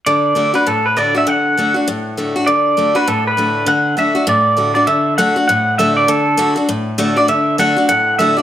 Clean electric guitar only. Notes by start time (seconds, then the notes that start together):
0.06 D5
0.55 B4
0.67 A4
0.86 B4
0.97 D5
1.18 E5
1.28 F#5
2.47 D5
2.96 B4
3.08 A4
3.27 B4
3.68 F#5
3.99 E5
4.29 D5
4.75 D5
4.87 E5
5.18 F#5
5.48 F#5
5.78 E5
5.97 D5
6.08 A4
7.17 D5
7.29 E5
7.59 F#5
7.89 F#5
8.19 E5
8.37 D5